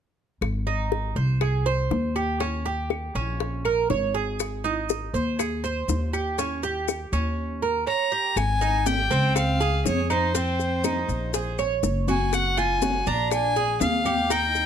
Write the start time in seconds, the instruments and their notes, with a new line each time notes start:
0.41 upright bass G#1, high bongo, claves
0.67 cuban tres D#4, high bongo
0.92 high bongo
1.16 upright bass C2, cuban tres C5
1.41 cuban tres G#4, high bongo, claves
1.66 cuban tres C5, high bongo
1.91 upright bass D#2, high bongo, low bongo
2.16 cuban tres G4, high bongo, claves
2.40 cuban tres C#4, high bongo
2.66 cuban tres G4, high bongo
2.90 high bongo, claves
3.15 upright bass A#1, cuban tres C#4
3.40 high bongo
3.65 cuban tres A#4, high bongo, claves
3.90 upright bass G#1, cuban tres C#5, high bongo, low bongo
4.14 cuban tres G#4, high bongo
4.40 high bongo, claves, maracas
4.64 cuban tres D#4, high bongo, maracas
4.89 high bongo, maracas
5.14 upright bass D#2, cuban tres C5, maracas
5.39 cuban tres G#4, high bongo, claves, maracas
5.64 cuban tres C5, high bongo, maracas
5.88 upright bass D#2, high bongo, low bongo, maracas
6.13 cuban tres G4, high bongo, claves, maracas
6.38 cuban tres C#4, high bongo, maracas
6.63 cuban tres G4, high bongo, maracas
6.88 high bongo, claves, maracas
7.12 upright bass D#2, cuban tres C#4, maracas
7.62 cuban tres A#4
7.87 cuban tres C#5, violin A#5
8.12 cuban tres G4
8.36 upright bass G#1, violin G#5, high bongo, high conga, claves, maracas
8.61 cuban tres D#4, high bongo, high conga, maracas
8.86 cuban tres G4, violin G5, high bongo, high conga, maracas
9.11 upright bass C#2, cuban tres C4, maracas
9.36 violin F5, high bongo, high conga, claves, maracas
9.60 cuban tres G#4, high bongo, high conga, maracas
9.85 upright bass F2, violin C#5, high bongo, low bongo, high conga, maracas
10.10 cuban tres D#4, violin C5, high bongo, claves, maracas
10.35 cuban tres C4, high bongo, high conga, maracas
10.59 high bongo, high conga, maracas
10.84 cuban tres D#4, high bongo, high conga, claves, maracas
11.09 upright bass A#1, high conga, maracas
11.34 cuban tres G#4, high bongo, high conga, maracas
11.59 cuban tres C#5, high bongo, high conga, claves, maracas
11.83 upright bass F#1, high bongo, low bongo, high conga, maracas
12.08 cuban tres F#4, violin G#5, high bongo, high conga, maracas
12.33 violin F#5, high bongo, high conga, claves, maracas
12.57 cuban tres F4, violin G#5, high bongo, high conga, maracas
12.82 cuban tres F#4, high bongo, high conga, maracas
13.07 upright bass A#1, cuban tres D4, violin A#5, maracas
13.31 violin G#5, high bongo, high conga, claves, maracas
13.56 cuban tres G#4, high bongo, high conga, maracas
13.80 upright bass D#2, violin F5, high bongo, low bongo, high conga, maracas
14.05 cuban tres G4, high bongo, high conga, claves, maracas
14.30 cuban tres D#4, violin G5, high bongo, high conga, maracas
14.55 high bongo, high conga, maracas